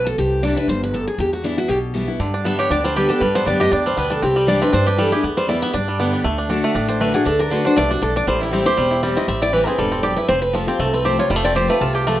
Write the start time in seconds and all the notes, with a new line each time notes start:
Already playing: B1 B2
0.07 A4
0.18 C2 C3 G4
0.43 E3 G3 D4 E4 D5
0.56 D4 E4 B4
0.68 G1 G2 C5
0.84 B4
0.94 F#2 A4
1.08 G#4
1.18 E2 G4
1.33 F#4
1.44 E3 G3 B3 D4 E4
1.57 B3 E4 F#4
1.68 B1 B2 G4
1.94 E3 G3 B3 E4
2.08 B3 E4
2.19 G2 D3
2.34 D4
2.44 D3 G3 B3 G4 E5
2.59 G4 C#5
2.70 D2 D3 D4 D5
2.84 G3 C5
2.96 D3 G3 B3 G4 B4
3.09 B3 D4 G4 A4
3.20 G2 G3 B4
3.35 B3 C5
3.46 F#2 D3 G3 B3 D4 G4 D5
3.60 B3 G4 D#5
3.72 E2 A2 D4 D5
3.86 G3 C5
3.97 D2 B2 B3 B4
4.10 D4 A4
4.22 C2 C3 C4 G4
4.36 G3
4.47 E3 G3 D4 E4 D5
4.61 C4 D4 E4 B4
4.73 G2 D4 C5
4.87 G4 B4
4.98 E3 G3 D4 E4 A4
5.12 D4 E4 G4 G#4
5.23 E2 B3
5.37 G3 C5
5.48 E3 G3 B3 E4 D5
5.62 B3 E4 E5
5.73 G2 D4 D5
5.88 G3
5.99 D3 G3 B3 G4
6.13 D4
6.24 D2 D3 A3
6.38 D4
6.49 D3 A3 D4 F#4
6.64 A3
6.75 A1 A2 D4
6.88 D4 C5
7.00 D3 A3 D4 F#4 B4
7.14 D4 F#4 G#4
7.25 D2 D3 D4 A4
7.39 D4 A#4
7.50 D3 A3 D4 F#4 B4
7.65 D4 F#4 C5
7.76 C2 C3 A3 D5
7.90 D4 F#4
8.02 B1 B2 D4 A4
8.16 D4 D5
8.27 A1 A2 G3 C5
8.41 E4
8.51 E3 G3 C4 E4 G4
8.66 C4 E4 G4 C5
8.77 E1 E2 G3
8.91 E4
9.03 E3 G3 C4 E4
9.17 C4 E4 D#5
9.28 A1 A2 C4 E5
9.42 E4 D5
9.53 E3 G3 C4 E4 B4
9.67 C4 E4 G#4
9.78 E1 G2 G3 A4
9.92 C4
10.03 F#2 G4 D5
10.17 E4 B4
10.28 F1 F2 C4 C5
10.42 B4
10.53 F3 A3 C4 F4 A4
10.67 C4 F4 G4
10.79 C2 C3 A3 A4
10.93 C4 B4
11.05 F3 A3 C4 F4 G4 C5
11.19 C4 F4 C#5
11.30 F1 F2 G3 C5
11.36 A3
11.45 C4 D5
11.55 F3 A3 C4 F4 G4 C5
11.69 A3 C4 F4 B4
11.81 C2 C3 F4 A4
11.95 G4
12.07 F3 A3 C4 F4 A4